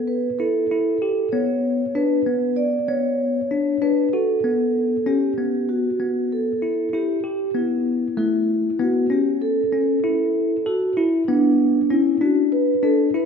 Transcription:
Already playing: tine electric piano B3, vibraphone A4
0.07 vibraphone B4
0.39 tine electric piano E4, vibraphone A4
0.71 tine electric piano E4
1.02 tine electric piano G4
1.32 tine electric piano B3, vibraphone C#5
1.95 tine electric piano D4, vibraphone B4
2.27 tine electric piano B3
2.56 vibraphone D5
2.88 tine electric piano B3, vibraphone C#5
3.51 tine electric piano D4
3.82 tine electric piano D4, vibraphone B4
4.13 tine electric piano F#4, vibraphone A4
4.44 tine electric piano B3
5.06 tine electric piano C#4, vibraphone G4
5.38 tine electric piano B3
5.69 vibraphone F#4
6.00 tine electric piano B3
6.32 vibraphone A4
6.62 tine electric piano E4
6.93 tine electric piano E4, vibraphone G4
7.24 tine electric piano G4
7.55 tine electric piano B3, vibraphone E4
8.17 tine electric piano A3, vibraphone E4
8.80 tine electric piano B3, vibraphone F#4
9.10 tine electric piano C#4, vibraphone G4
9.41 vibraphone A4
9.73 tine electric piano C#4
10.04 tine electric piano E4
10.66 vibraphone F#4, tine electric piano A4
10.97 vibraphone E4, tine electric piano E4
11.28 tine electric piano B3, vibraphone D4
11.90 tine electric piano C#4, vibraphone E4
12.21 tine electric piano D4, vibraphone F#4
12.52 vibraphone B4
12.83 tine electric piano D4, vibraphone A4
13.14 tine electric piano E4, vibraphone B4

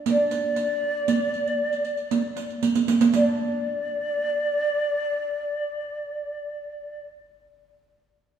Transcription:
0.06 oud D4, ney D#5, riq
0.11 ney D5
0.31 riq
0.56 riq
1.08 riq
1.34 riq
1.47 riq
1.73 riq
1.85 riq
1.97 riq
2.11 riq
2.37 riq
2.50 riq
2.63 riq
2.75 riq
2.88 riq
3.01 riq
3.13 oud D4, ney D5, riq

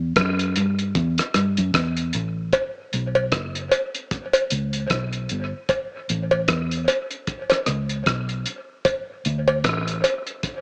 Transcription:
Already playing: fingered electric bass E2
0.16 fingered electric bass F#2, kick, cross-stick, closed hi-hat
0.39 closed hi-hat
0.56 fingered electric bass G2, closed hi-hat
0.79 closed hi-hat
0.95 fingered electric bass E2, kick, closed hi-hat
1.18 cross-stick, closed hi-hat
1.34 fingered electric bass G2, cross-stick, closed hi-hat
1.57 fingered electric bass F#2, closed hi-hat
1.74 fingered electric bass E2, kick, cross-stick, closed hi-hat
1.97 closed hi-hat
2.13 fingered electric bass A1, closed hi-hat
2.53 kick, closed hi-hat, cowbell
2.93 fingered electric bass B1, closed hi-hat
3.15 cowbell
3.32 fingered electric bass F#1, kick, cross-stick, closed hi-hat
3.55 closed hi-hat
3.71 closed hi-hat, cowbell
3.94 closed hi-hat
4.11 kick, closed hi-hat
4.33 closed hi-hat, cowbell
4.50 fingered electric bass C#2, closed hi-hat
4.73 closed hi-hat
4.90 fingered electric bass B1, kick, cross-stick, closed hi-hat
5.13 closed hi-hat
5.29 fingered electric bass G1, closed hi-hat
5.69 kick, closed hi-hat, cowbell
6.09 fingered electric bass A1, closed hi-hat
6.31 cowbell
6.48 fingered electric bass E2, kick, cross-stick, closed hi-hat
6.71 closed hi-hat
6.88 closed hi-hat, cowbell
7.11 closed hi-hat
7.27 kick, closed hi-hat
7.50 cross-stick, closed hi-hat, cowbell
7.66 fingered electric bass C#2, cross-stick, closed hi-hat
7.89 closed hi-hat
8.06 fingered electric bass B1, kick, cross-stick, closed hi-hat
8.29 closed hi-hat
8.46 closed hi-hat
8.85 kick, closed hi-hat, cowbell
9.25 fingered electric bass D2, closed hi-hat
9.48 cowbell
9.64 fingered electric bass A1, kick, cross-stick, closed hi-hat
9.88 closed hi-hat
10.04 closed hi-hat, cowbell
10.27 closed hi-hat
10.43 kick, closed hi-hat

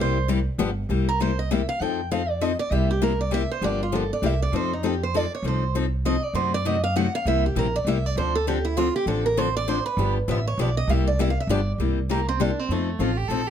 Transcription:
Already playing: upright bass C2, steel-string acoustic guitar C3
0.00 steel-string acoustic guitar G3 A#3 E4 G4 C5
0.28 steel-string acoustic guitar C3 G3 A#3 E4 G4
0.58 upright bass G1, steel-string acoustic guitar D3 F3 B3 D4 G4
0.89 upright bass C2, steel-string acoustic guitar C3 G3 A#3 E4 G4
1.09 steel-string acoustic guitar A#4
1.20 steel-string acoustic guitar C3 G3 A#3 E4 G4 C5
1.39 steel-string acoustic guitar D#5
1.51 steel-string acoustic guitar C3 G3 A#3 E4 G4 E5
1.69 steel-string acoustic guitar F5
1.80 upright bass F2, steel-string acoustic guitar F3 C4 D#4 A4 G5
2.11 steel-string acoustic guitar F3 C4 D#4 A4 F5
2.29 steel-string acoustic guitar D5
2.41 steel-string acoustic guitar F3 C4 D#4 A4 D#5
2.59 steel-string acoustic guitar D5
2.71 upright bass C2, steel-string acoustic guitar C3 G3 A#3 E4 G4 E5
2.91 steel-string acoustic guitar G4
3.02 steel-string acoustic guitar C3 G3 A#3 E4 G4 A#4
3.21 steel-string acoustic guitar D5
3.31 steel-string acoustic guitar C3 G3 A#3 E4 G4 E5
3.51 steel-string acoustic guitar C5
3.61 upright bass G1, steel-string acoustic guitar D3 F3 A#3 D4 G4 D5
3.83 steel-string acoustic guitar F4
3.92 steel-string acoustic guitar D3 F3 A#3 D4 G4 A4
4.13 steel-string acoustic guitar D5
4.22 upright bass C2, steel-string acoustic guitar C3 G3 A#3 E4 G4
4.26 steel-string acoustic guitar E5
4.42 steel-string acoustic guitar D5
4.52 upright bass F2, steel-string acoustic guitar F3 C4 D#4 A4 C5
4.73 steel-string acoustic guitar D#4
4.83 steel-string acoustic guitar F3 C4 D#4 G4 A4
5.03 steel-string acoustic guitar C5
5.14 steel-string acoustic guitar F3 C4 D#4 A4 D5
5.35 steel-string acoustic guitar C#5
5.43 upright bass C2, steel-string acoustic guitar F3 C4 D#4 A4
5.48 steel-string acoustic guitar C5
5.75 steel-string acoustic guitar F3 C4 D#4 A4
6.05 steel-string acoustic guitar F3 C4 D#4 A4 D#5
6.24 steel-string acoustic guitar D5
6.33 upright bass F#2, steel-string acoustic guitar C3 F#3 A3 D#4 F#4 C5
6.54 steel-string acoustic guitar D5
6.65 steel-string acoustic guitar C3 F#3 A3 D#4 F#4 D#5
6.84 steel-string acoustic guitar F5
6.96 steel-string acoustic guitar C3 F#3 A3 D#4 F#4 F#5
7.15 steel-string acoustic guitar F5
7.25 upright bass C2, steel-string acoustic guitar C3 G3 A#3 E4 G4 E5
7.46 steel-string acoustic guitar G4
7.55 upright bass A#1, steel-string acoustic guitar C3 G3 A#3 E4 G4 A#4
7.76 steel-string acoustic guitar D5
7.85 upright bass C2, steel-string acoustic guitar C3 G3 A#3 E4 G4 E5
8.06 steel-string acoustic guitar D5
8.16 upright bass D2, steel-string acoustic guitar D3 F3 C4 D4 A4 C5
8.35 steel-string acoustic guitar A4
8.47 steel-string acoustic guitar D3 F3 C4 D4 G4 A4
8.65 steel-string acoustic guitar E4
8.77 steel-string acoustic guitar D3 F3 C4 D4 F4 A4
8.96 steel-string acoustic guitar G4
9.06 upright bass A1, steel-string acoustic guitar D3 F3 C4 D4 A4
9.26 steel-string acoustic guitar A#4
9.37 steel-string acoustic guitar D3 F3 C4 D4 A4 C5
9.57 steel-string acoustic guitar D5
9.68 steel-string acoustic guitar D3 F3 C4 D4 A4 C5
9.86 steel-string acoustic guitar B4
9.97 upright bass G1, steel-string acoustic guitar D3 F3 B3 D4 G4
10.28 upright bass A1, steel-string acoustic guitar D3 F3 B3 D4 G4 E5
10.48 steel-string acoustic guitar C#5
10.58 upright bass B1, steel-string acoustic guitar D3 F3 B3 D4 G4 D5
10.77 steel-string acoustic guitar D#5
10.87 upright bass C2, steel-string acoustic guitar C3 G3 A#3 E4 G4 E5
11.07 steel-string acoustic guitar D5
11.19 steel-string acoustic guitar C3 G3 A#3 E4 G4 E5
11.30 steel-string acoustic guitar F5
11.40 steel-string acoustic guitar E5
11.47 upright bass G1, steel-string acoustic guitar D3 F3 B3 D4 G4 D5
11.78 upright bass C2, steel-string acoustic guitar C3 G3 A#3 E4 G4
12.09 steel-string acoustic guitar C3 G3 A#3 E4 G4
12.29 steel-string acoustic guitar C4
12.40 steel-string acoustic guitar C3 G3 A#3 D4 E4 G4
12.59 steel-string acoustic guitar C4
12.69 upright bass F2, steel-string acoustic guitar F3 A3 C4 D#4 A4
12.99 upright bass A1, steel-string acoustic guitar F3 C4 D#4 A4, violin F4
13.17 violin G4
13.28 upright bass A#1, steel-string acoustic guitar F3 C4 D#4 A4, violin A4
13.47 violin G4

